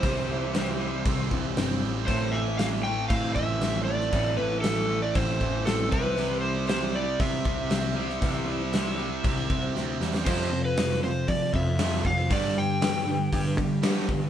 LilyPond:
<<
  \new Staff \with { instrumentName = "Electric slide guitar" } { \time 4/4 \key c \major \tempo 4 = 118 c''2~ c''8 r4. | c''8 e''8 f''8 g''8 f''8 e''4 d''8~ | d''8 b'8 a'8. d''16 c''4 a'8 b'8~ | b'8 c''8 c''8 d''8 e''2~ |
e''2. r4 | c''8. b'8. c''8 d''8 e''4 f''8 | d''8 g''2 r4. | }
  \new Staff \with { instrumentName = "Steel-string acoustic guitar" } { \time 4/4 \key c \major <c e g c' e' c''>8. <g c' e' c''>16 <c e g c' e' c''>8 <g c' e' c''>16 <g c' e' c''>8. <g c' e' c''>16 <g c' e' c''>16 <c e g c' e' c''>16 <g c' e' c''>16 <g c' e' c''>16 <g c' e' c''>16 | <a, e a c' e' c''>8. <a c' e' c''>16 <a, e a c' e' c''>8 <a c' e' c''>16 <a c' e' c''>8. <a c' e' c''>8 <a, e a c' e' c''>16 <a c' e' c''>16 <a c' e' c''>16 <a c' e' c''>16 | <a, e a c' e' c''>8. <a c' e' c''>16 <a, e a c' e' c''>8 <a c' e' c''>16 <a c' e' c''>8. <a c' e' c''>8 <a, e a c' e' c''>16 <a c' e' c''>16 <g c' e' c''>16 <g c' e' c''>16 | <c e g c' e' c''>8. <g c' e' c''>16 <c e g c' e' c''>8 <g c' e' c''>4 <g c' e' c''>8 <c e g c' e' c''>16 <g c' e' c''>16 <g c' e' c''>16 <g c' e' c''>16 |
<c e g c' e' c''>8. <g c' e' c''>16 <c e g c' e' c''>8 <g c' e' c''>4 <g c' e' c''>16 <g c' e' c''>16 <c e g c' e' c''>16 <g c' e' c''>16 <g c' e' c''>16 <g c' e' c''>16 | <f a c' f' c''>4 <f a c' f' c''>16 <c' f' c''>16 <a c' f' c''>8. <c' f' c''>16 <a c' f' c''>16 <c' f' c''>16 <f a c' f' c''>8 <a c' f' c''>16 <c' f' c''>16 | <g d' g' b'>4 <g d' g' b'>16 <d' g' b'>16 <g d' g' b'>8. <d' g' b'>16 <g d' g' b'>8 <g d' g' b'>8 <g d' g' b'>16 <d' g' b'>16 | }
  \new Staff \with { instrumentName = "Distorted electric guitar" } { \clef bass \time 4/4 \key c \major <c e g c'>8 e8 e8 g8 c'8 e8 c'8 g8 | a,8 e8 e8 a8 c'8 e8 c'8 a8 | a,8 e8 e8 a8 c'8 e8 c'8 c8 | c8 g8 c8 g8 c'8 c8 c'8 g8 |
c8 g8 c8 g8 c'8 c8 c'8 g8 | <f, c f>8 <f, c>8 <f, c>8 <f, c>8 <f, c>8 <f, c>8 <f, c f>8 <f, c>8 | <g, d g>8 <g, d>8 <g, d>8 <g, d>8 <g, d>8 <g, d>8 <g, d g>8 <g, d>8 | }
  \new Staff \with { instrumentName = "Overdriven electric guitar" } { \clef bass \time 4/4 \key c \major <c g c'>2.~ <c g c'>8 r8 | <a, e a>1 | <a, e a>2.~ <a, e a>8 <c g c'>8~ | <c g c'>2.~ <c g c'>8 <c g c'>8~ |
<c g c'>2.~ <c g c'>8 r8 | <f, c f>8 <f, c>8 <f, c>8 <f, c>8 <f, c>8 <f, c>8 <f, c f>8 <f, c>8 | <g, d g>8 <g, d>8 <g, d>8 <g, d>8 <g, d>8 <g, d>8 <g, d g>8 <g, d>8 | }
  \new Staff \with { instrumentName = "Picked electric bass" } { \clef bass \time 4/4 \key c \major c,8 c,4. c,8 c,8 g,,8 a,,8 | a,,2 a,8 a,,4. | a,,8 a,,4. a,,8 a,,4 c,8 | c,2 c8 c,4. |
c,8 c,4. c,8 c,8 d,8 e,8 | f,2 f8 f,4 f,8 | g,2 g,8 g4 g,8 | }
  \new DrumStaff \with { instrumentName = "Drums" } \drummode { \time 4/4 <hho bd>16 sn8. <hho sn>4 <hho bd>8 bd8 <hho sn>4 | <hho bd>4 <hho sn>4 <hho bd>8 bd8 <hho sn>8. sn16 | <hho bd>4 <hho sn>4 <hho bd>8 bd8 <hho sn>8 bd8 | hho4 <hho sn>4 <hho bd>8 bd8 <hho sn>8. sn16 |
<hho bd>4 <hho sn>4 <hho bd>8 bd8 sn8 sn16 sn16 | <cymc bd>4 <hho sn>16 sn8. <hho bd>8 bd8 <hho sn>8 bd8 | <hho bd>4 <hho sn>4 <hho bd>8 bd8 <hho sn>8 bd8 | }
>>